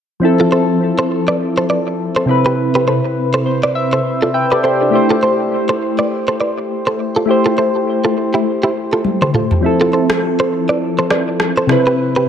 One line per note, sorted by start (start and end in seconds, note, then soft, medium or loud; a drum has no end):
0.20 2.23 F3 medium
0.20 2.24 C4 medium
0.20 2.25 E4 medium
0.25 2.25 A4 medium
0.40 0.48 F4 medium
0.40 0.48 A4 medium
0.52 0.63 A4 medium
0.52 0.63 C5 medium
0.99 1.07 A4 medium
0.99 1.06 C5 medium
1.28 1.36 B4 medium
1.28 1.36 D5 medium
1.58 1.66 A4 medium
1.58 1.65 C5 medium
1.70 1.81 B4 medium
1.70 1.81 D5 medium
2.16 2.25 A4 medium
2.16 2.24 C5 medium
2.26 4.58 C3 medium
2.26 4.59 C4 medium
2.26 4.30 E4 medium
2.31 4.31 B4 medium
2.46 2.54 G4 medium
2.46 2.53 B4 medium
2.75 2.83 G4 medium
2.75 2.83 B4 medium
2.88 2.99 A4 medium
2.88 2.98 C5 medium
3.34 3.42 A4 medium
3.34 3.42 C5 medium
3.46 3.73 C5 medium
3.63 3.72 B4 medium
3.63 3.71 D5 medium
3.75 4.30 E5 medium
3.93 4.01 A4 medium
3.93 4.01 C5 medium
4.22 4.31 F4 medium
4.22 4.30 A4 medium
4.34 4.51 B4 medium
4.34 4.50 E5 medium
4.34 4.89 G5 medium
4.51 4.60 G4 medium
4.51 4.63 A4 medium
4.51 4.59 B4 medium
4.51 4.63 D5 medium
4.63 4.79 G4 medium
4.63 4.75 A4 medium
4.63 4.80 C5 medium
4.63 4.75 C5 medium
4.81 5.09 D4 medium
4.81 4.93 G4 medium
4.90 7.23 A3 medium
4.90 7.24 E4 medium
4.90 7.25 G4 medium
4.95 7.25 C5 medium
5.10 5.19 F4 medium
5.10 5.18 A4 medium
5.23 5.34 A4 medium
5.23 5.33 C5 medium
5.69 5.77 A4 medium
5.69 5.77 C5 medium
5.99 6.07 B4 medium
5.99 6.06 D5 medium
6.28 6.36 A4 medium
6.28 6.36 C5 medium
6.40 6.52 B4 medium
6.40 6.51 D5 medium
6.87 6.95 A4 medium
6.87 6.95 C5 medium
7.16 7.25 F4 medium
7.16 7.24 A4 medium
7.26 9.58 A3 medium
7.26 9.59 E4 medium
7.26 9.60 G4 medium
7.30 9.61 C5 medium
7.46 7.54 F4 medium
7.46 7.53 A4 medium
7.58 7.69 A4 medium
7.58 7.69 C5 medium
8.05 8.13 F4 medium
8.05 8.12 A4 medium
8.34 8.42 E4 medium
8.34 8.42 G4 medium
8.63 8.72 E4 medium
8.63 8.71 G4 medium
8.93 9.01 F4 medium
8.93 9.01 A4 medium
9.05 high tom medium
9.22 9.30 A4 medium
9.22 9.30 C5 medium
9.22 mid tom medium
9.34 9.46 F4 medium
9.34 9.45 A4 medium
9.34 mid tom medium
9.51 floor tom medium
9.61 11.64 F3 medium
9.61 11.65 C4 medium
9.61 11.66 E4 medium
9.66 11.67 A4 medium
9.81 9.89 F4 medium
9.81 9.89 A4 medium
9.93 10.05 A4 medium
9.93 10.04 C5 medium
10.10 cross-stick loud
10.40 10.48 A4 medium
10.40 10.48 C5 medium
10.69 10.77 B4 medium
10.69 10.77 D5 medium
10.99 11.07 A4 medium
10.99 11.06 C5 medium
11.10 11.22 B4 medium
11.10 11.22 D5 medium
11.10 cross-stick medium
11.40 cross-stick medium
11.57 11.66 A4 medium
11.57 11.65 C5 medium
11.67 12.29 C3 medium
11.67 12.29 C4 medium
11.67 12.29 E4 medium
11.67 cross-stick medium
11.72 12.29 B4 medium
11.87 11.95 G4 medium
11.87 11.95 B4 medium
12.16 12.25 G4 medium
12.16 12.24 B4 medium